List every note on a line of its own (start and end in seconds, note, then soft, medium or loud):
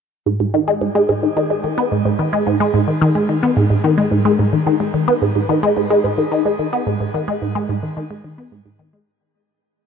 0.26 0.35 G#2 medium
0.40 0.45 G#2 medium
0.54 0.62 D#3 medium
0.68 0.76 G#3 loud
0.81 0.90 G#2 medium
0.95 1.03 G#3 loud
1.09 1.14 G#2 medium
1.23 1.28 D#3 medium
1.37 1.45 D#3 loud
1.50 1.63 G#3 medium
1.64 1.72 D#3 medium
1.78 1.83 B3 medium
1.92 2.00 G#2 medium
2.05 2.10 G#2 medium
2.19 2.27 D#3 medium
2.33 2.41 G#3 medium
2.47 2.55 G#2 medium
2.60 2.69 G#3 medium
2.74 2.79 G#2 medium
2.88 2.93 D#3 medium
3.01 3.10 D#3 loud
3.15 3.28 G#3 medium
3.29 3.37 D#3 medium
3.43 3.48 B3 medium
3.57 3.65 G#2 medium
3.70 3.75 G#2 medium
3.84 3.92 D#3 loud
3.98 4.06 G#3 loud
4.11 4.20 G#2 medium
4.25 4.34 G#3 loud
4.39 4.44 G#2 medium
4.53 4.58 D#3 medium
4.67 4.75 D#3 medium
4.80 4.93 G#3 medium
4.94 5.02 D#3 medium
5.08 5.13 B3 loud
5.22 5.30 G#2 medium
5.35 5.40 G#2 medium
5.49 5.58 D#3 loud
5.63 5.71 G#3 loud
5.77 5.85 G#2 medium
5.90 5.99 G#3 medium
6.04 6.09 G#2 medium
6.18 6.23 D#3 medium
6.32 6.40 D#3 medium
6.45 6.58 G#3 medium
6.59 6.68 D#3 medium
6.73 6.78 B3 loud
6.87 6.95 G#2 medium
7.00 7.06 G#2 medium
7.14 7.23 D#3 loud
7.28 7.36 G#3 loud
7.42 7.50 G#2 medium
7.55 7.64 G#3 loud
7.69 7.74 G#2 medium
7.83 7.88 D#3 medium
7.97 8.05 D#3 loud
8.11 8.23 G#3 medium
8.24 8.33 D#3 medium
8.38 8.43 B3 loud
8.52 8.60 G#2 medium
8.66 8.71 G#2 medium
8.79 8.88 D#3 medium
8.93 9.01 G#3 loud